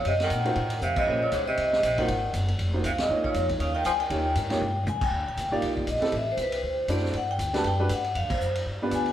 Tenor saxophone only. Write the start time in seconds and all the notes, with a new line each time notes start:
0.07 C3
0.23 D#3
0.82 C3
0.97 C3
1.23 A#2
1.32 G#2
1.47 C3
1.83 C3
1.99 D#3
2.85 C3
3.00 A#2
3.24 A#2
3.60 C#3
3.75 D#3
3.86 F3
4.00 D#3